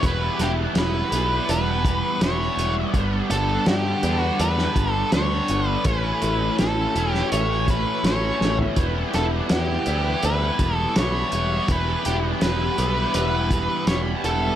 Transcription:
Already playing: G3 B3 E4 G4
0.03 E1 E3 G3 B3 E4 B4, kick, closed hi-hat
0.39 E1 G4, snare, closed hi-hat
0.75 E1 B4, snare, closed hi-hat
1.12 B1 E3 G3 B3 E4, closed hi-hat
1.49 E1 B4, closed hi-hat
1.85 kick, closed hi-hat
2.21 E1 E3 G3 B3 E4 C#5, snare, closed hi-hat
2.57 E1, closed hi-hat
2.94 G1 G2 D3 G3 B3 D4, kick, closed hi-hat
3.30 G1 A4, closed hi-hat
3.66 G2 G4, snare, closed hi-hat
4.03 E2 G2 D3 G3 B3 D4, closed hi-hat
4.20 F#4
4.40 E2 B4, closed hi-hat
4.58 snare
4.76 G1, kick, closed hi-hat
4.92 A4
5.12 D2 G2 D3 G3 B3 D4 C#5, snare, closed hi-hat
5.48 G1, closed hi-hat
5.69 B4
5.85 A1 A2 E3 A3 C#4 E4 F#4 B4, kick, closed hi-hat
6.22 A1, closed hi-hat
6.59 A1 A4, snare, closed hi-hat
6.95 E1 A2 E3 A3 C#4 E4, closed hi-hat
7.11 G4, snare
7.32 A1 C#5, closed hi-hat
7.68 B4, kick, closed hi-hat
8.04 A1 A2 E3 A3 C#4 E4 C#5, snare, closed hi-hat
8.41 A1, snare
8.59 floor tom
8.76 E1 E3 G3 B3 G4, kick, closed hi-hat
8.80 E4
9.14 E1 A4, snare, closed hi-hat
9.49 E2 G4, snare, closed hi-hat
9.86 D2 E3 G3 B3 E4, closed hi-hat
10.23 D2 B4, closed hi-hat
10.59 E1, kick, closed hi-hat
10.76 A4
10.95 B1 E3 G3 B3 E4 C#5, snare, closed hi-hat
11.32 E1, closed hi-hat
11.68 E1 E3 G3 B3 D4 E4 B4, kick, closed hi-hat
12.05 E1 G4, closed hi-hat
12.41 E1 B4, snare, closed hi-hat
12.77 B1 E3 G3 B3 E4, closed hi-hat
13.14 E1 B4, closed hi-hat
13.51 kick, closed hi-hat
13.87 E1 E3 G3 B3 E4 C#5, snare, closed hi-hat
14.24 E1 A4, closed hi-hat

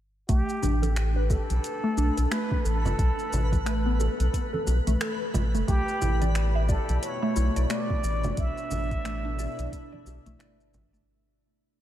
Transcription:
0.28 B1 A3 G4 B4, kick, closed hi-hat, shaker
0.49 shaker
0.62 A1 D4, low conga, shaker
0.82 A4, closed hi-hat, high conga, shaker
0.96 finger snap, closed hi-hat, shaker
1.16 B4
1.30 A4, kick, high bongo, shaker
1.50 B1, closed hi-hat, high conga, shaker
1.64 closed hi-hat, shaker
1.83 A3
1.97 B1 D4, shaker
2.17 B1 A4, closed hi-hat, shaker
2.31 A3 B4, finger snap, closed hi-hat, high bongo, shaker
2.51 kick, high conga
2.65 A1 A4, shaker
2.85 F#1, high conga, low conga, shaker
2.99 B1, kick, closed hi-hat, shaker
3.19 shaker
3.32 A1, low conga, shaker
3.52 kick, closed hi-hat, high conga, shaker
3.65 A3, finger snap, closed hi-hat, shaker
3.86 B3
3.99 A4, high bongo, shaker
4.20 B1, closed hi-hat, high conga, shaker
4.34 kick, closed hi-hat, shaker
4.53 A4, high conga
4.67 B1, high bongo, shaker
4.87 B1 A3, closed hi-hat, high conga, shaker
5.01 A4, finger snap, closed hi-hat, shaker
5.34 A1, high conga, low conga, shaker
5.54 F#1 A3, shaker
5.68 B1 B2 A3 G4, kick, closed hi-hat, shaker
5.88 shaker
6.02 A1 E4, low conga, shaker
6.21 D5, closed hi-hat, high conga, shaker
6.33 A3, finger snap, closed hi-hat, shaker
6.55 E5
6.69 A4 D5, kick, high bongo, shaker
6.89 B1, closed hi-hat, high conga, shaker
7.03 C#5, closed hi-hat, shaker
7.22 A3 D4
7.36 B1 E4, shaker
7.56 B1 D5, closed hi-hat, shaker
7.70 A3 D5, finger snap, closed hi-hat, high bongo, shaker
7.90 kick, high conga
8.00 A1 E4
8.04 D5, shaker
8.23 F#1, high conga, low conga, shaker
8.37 B1 E5, kick, closed hi-hat, shaker
8.58 shaker
8.71 A1, low conga, shaker
8.91 kick, closed hi-hat, high conga, shaker
9.05 A3, finger snap, closed hi-hat, shaker
9.25 D4
9.38 D5, high bongo, shaker
9.58 B1, closed hi-hat, high conga, shaker
9.72 kick, closed hi-hat, shaker
9.92 D5, high conga
10.06 B1, high bongo, shaker
10.26 B1 A3, closed hi-hat, high conga, shaker
10.39 D5, finger snap, closed hi-hat, shaker
10.60 shaker
10.74 A1, high conga, low conga, shaker
10.93 F#1 A3, high bongo, shaker

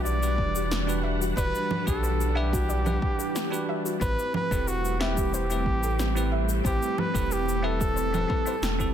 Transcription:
Already playing: B1 E3 G3 D4 G4 B4 F#5
0.04 D5, shaker
0.22 D4 F#4 G4 B4, shaker
0.38 E1, kick
0.56 G4, shaker
0.71 B4, snare, shaker
0.87 D4 F#4 G4 B4, shaker
1.03 E5
1.21 F#4, shaker
1.37 E1 D4 F#4 G4 B4 D5, kick, shaker
1.55 shaker
1.71 low conga
1.86 B1 D4 F#4 G4 A4 B4, kick, shaker
2.03 B4, shaker
2.21 shaker
2.35 D4 G4 B4 E5 F#5
2.53 F#4, kick, shaker
2.69 D5, shaker
2.85 D4 G4 B4 F#5, low conga, shaker
3.02 kick
3.19 G4, shaker
3.35 B4, snare, shaker
3.50 D4 F#4 G4 B4, shaker
3.69 E5
3.85 F#4, shaker
4.00 A1 G3 A3 C4 E4 G4 B4 C5, kick, shaker
4.19 shaker
4.34 B4, low conga
4.51 E1 C4 E4 G4 A4 B4, kick, shaker
4.67 F#4 B4, shaker
4.85 shaker
4.99 C4 E4 G4 B4 E5, snare
5.17 G4, kick, shaker
5.34 G4 C5, shaker
5.50 C4 E4 G4 B4, shaker
5.66 A1, kick
5.83 A4, shaker
5.99 B4, snare, shaker
6.15 C4 E4 G4 B4, shaker
6.32 E5
6.49 G4, shaker
6.64 A1 C4 E4 G4 B4 C5, kick, shaker
6.83 shaker
6.98 B4, low conga
7.14 E1 C4 E4 G4 A4 B4, kick, shaker
7.30 G4 B4, shaker
7.49 shaker
7.63 C4 E4 G4 A4 B4 E5
7.80 G4, kick, shaker
7.96 C5, shaker
8.13 C4 E4 G4 B4, low conga, shaker
8.28 C4 E4 G4 B4, kick
8.46 C4 E4 G4 B4 C5, shaker
8.62 E1 G5, snare, shaker
8.79 C4 E4 G4 A4, kick, shaker

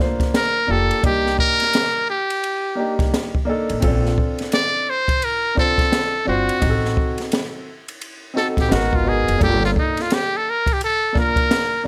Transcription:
0.00 A#3 D4 F4 C5, snare
0.20 kick, snare, ride
0.34 A#4, snare, hi-hat pedal, ride
0.67 F1 A#3 D4 F4 G4 A4
0.91 ride
1.02 C2 A#3 D4 D#4 G4, kick, ride
1.26 snare
1.39 A#4, kick
1.60 snare, ride
1.73 snare, hi-hat pedal, ride
2.10 G4
2.30 ride
2.44 ride
2.75 A#3 D4 D#4 G4
2.99 C2, kick, snare, ride
3.14 snare, hi-hat pedal, ride
3.35 kick
3.45 A#3 D4 D#4
3.49 A4
3.69 A1, ride
3.80 A#1 C4 C#4 F4 A4, kick, ride
3.88 D4
4.05 snare
4.18 kick
4.38 snare, ride
4.52 D5, snare, hi-hat pedal, ride
4.90 C5
5.08 kick, ride
5.22 A#4, ride
5.55 C4 D4 F4 C5, kick, snare
5.59 A4
5.78 kick, snare, ride
5.92 snare, hi-hat pedal, ride
6.25 G1 C4 D4 F4 F#4 C5
6.49 ride
6.59 A1 C4 D#4 F#4 G4, kick, ride
6.70 A4
6.85 snare
6.97 kick
7.18 snare, ride
7.32 snare, hi-hat pedal, ride
7.88 ride
8.01 ride
8.34 C4 D#4 F#4 A4, snare
8.57 A1 G4, kick, snare, ride
8.69 G#1 B3 D#4 F#4, snare, hi-hat pedal, ride
8.73 F#4 A#4
8.93 F4, kick
9.04 B3 D#4 F#4 A#4
9.09 G#4
9.28 F1, ride
9.38 G1 A#3 D4 F4, kick, ride
9.42 G4 A4
9.64 F4, snare
9.76 D#4, kick
9.97 snare, ride
10.02 F4
10.10 G4, snare, hi-hat pedal, ride
10.37 A4
10.50 A#4
10.66 kick, ride
10.73 G4
10.81 A4, ride
11.13 A#3 D4 F4, kick, snare
11.17 A#4
11.36 kick, ride
11.51 snare, hi-hat pedal, ride
11.83 A#3 D4

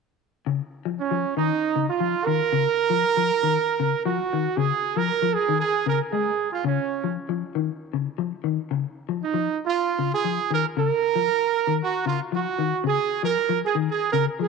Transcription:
0.46 C#3
0.85 F3
0.99 C#4
1.11 F3
1.36 D#3 D#4
1.76 C#3
1.88 F4
2.00 F3
2.25 D#3 A#4
2.52 C#3
2.90 F3
3.17 F3
3.43 D#3
3.80 C#3
4.04 F3 F#4
4.33 D#3
4.57 C#3 G#4
4.96 F3 A#4
5.22 F3
5.34 G#4
5.49 D#3
5.60 G#4
5.86 C#3 A#4
6.11 G#3 G#4
6.52 F4
6.64 C#3 C#4
7.04 F3
7.29 F3
7.55 D#3
7.93 C#3
8.18 F3
8.44 D#3
8.71 C#3
9.09 F3
9.22 D#4
9.34 F3
9.66 F4
9.99 C#3
10.13 G#4
10.24 F3
10.50 D#3 A#4
10.77 C#3 A#4
11.15 F3
11.67 D#3
11.83 F#4
12.06 C#3 F4
12.32 F3 F#4
12.58 D#3
12.84 C#3 G#4
13.23 F3 A#4
13.49 F3
13.65 G#4
13.75 D#3
13.90 G#4
14.13 C#3 A#4
14.39 F3 G#4

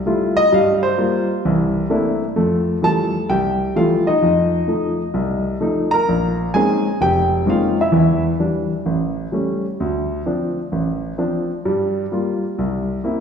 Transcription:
0.06 G3 A3 E4 F4
0.37 D#5
0.52 G2 G3 F5
0.83 C5
0.98 G3 A#3 F4
1.45 C2 E3
1.90 A3 A#3 C4 D4 E4
2.36 F2 A3
2.82 E3 F3 G3 A3 A4 A5
3.29 C2 G4 G5
3.76 E3 F3 G3 A3 F4 F5
4.07 D#4 D#5
4.22 F2
4.68 F3 A3 D#4
5.14 C2
5.61 F3 A3 D#4
5.91 A#4 A#5
6.09 A#1
6.54 G#3 A#3 C4 C#4 D#4 G#4 G#5
7.01 F1 G4 G5
7.46 G#3 A#3 C4 C#4 D#4 F4 F5
7.81 E4 E5
7.92 E2 E3
8.39 E3 G3 D4
8.86 A1
9.32 G3 A3 C#4
9.80 D2
10.26 F3 C4 D4
10.72 A1
11.18 F3 C4 D4
11.65 G2 G3
12.12 G3 A#3 F4
12.59 C2
13.04 A#3 C4 E4

